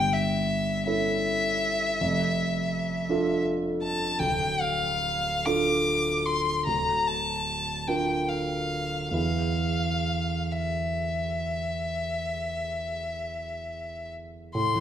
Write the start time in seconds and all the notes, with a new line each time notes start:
Already playing: G1 G2 G5
0.13 E5
0.86 C#4 E4 A4 E5
2.01 F1 F2
3.09 D4 F4 A4
3.83 A5
4.19 D1 D2 G5
4.61 F5
5.46 D4 F4 A4 D6
6.26 C6
6.66 D1 D2 A#5
7.07 A5
7.88 D4 F4 A#4 G5
8.28 F5
9.11 E2 B3 E4 G#4 F5
10.52 E5
14.55 A2 C6
14.75 E3